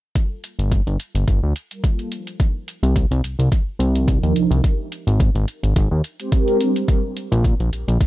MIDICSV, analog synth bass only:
0, 0, Header, 1, 2, 480
1, 0, Start_track
1, 0, Tempo, 560748
1, 134, Time_signature, 4, 2, 24, 8
1, 6906, End_track
2, 0, Start_track
2, 0, Title_t, "Analog synth bass"
2, 0, Program_c, 0, 38
2, 502, Note_on_c, 0, 31, 94
2, 698, Note_off_c, 0, 31, 0
2, 742, Note_on_c, 0, 31, 93
2, 833, Note_off_c, 0, 31, 0
2, 981, Note_on_c, 0, 31, 77
2, 1073, Note_off_c, 0, 31, 0
2, 1093, Note_on_c, 0, 31, 94
2, 1203, Note_off_c, 0, 31, 0
2, 1224, Note_on_c, 0, 38, 100
2, 1314, Note_off_c, 0, 38, 0
2, 2421, Note_on_c, 0, 36, 93
2, 2617, Note_off_c, 0, 36, 0
2, 2663, Note_on_c, 0, 36, 93
2, 2753, Note_off_c, 0, 36, 0
2, 2770, Note_on_c, 0, 36, 45
2, 2878, Note_off_c, 0, 36, 0
2, 2900, Note_on_c, 0, 36, 81
2, 2992, Note_off_c, 0, 36, 0
2, 3246, Note_on_c, 0, 36, 93
2, 3585, Note_off_c, 0, 36, 0
2, 3621, Note_on_c, 0, 39, 80
2, 3713, Note_off_c, 0, 39, 0
2, 3728, Note_on_c, 0, 36, 42
2, 3837, Note_off_c, 0, 36, 0
2, 3857, Note_on_c, 0, 36, 98
2, 3951, Note_off_c, 0, 36, 0
2, 4340, Note_on_c, 0, 32, 98
2, 4537, Note_off_c, 0, 32, 0
2, 4579, Note_on_c, 0, 32, 96
2, 4671, Note_off_c, 0, 32, 0
2, 4821, Note_on_c, 0, 32, 81
2, 4912, Note_off_c, 0, 32, 0
2, 4930, Note_on_c, 0, 32, 95
2, 5041, Note_off_c, 0, 32, 0
2, 5061, Note_on_c, 0, 39, 94
2, 5153, Note_off_c, 0, 39, 0
2, 6264, Note_on_c, 0, 34, 94
2, 6459, Note_off_c, 0, 34, 0
2, 6503, Note_on_c, 0, 34, 96
2, 6594, Note_off_c, 0, 34, 0
2, 6610, Note_on_c, 0, 34, 43
2, 6717, Note_off_c, 0, 34, 0
2, 6743, Note_on_c, 0, 34, 80
2, 6834, Note_off_c, 0, 34, 0
2, 6906, End_track
0, 0, End_of_file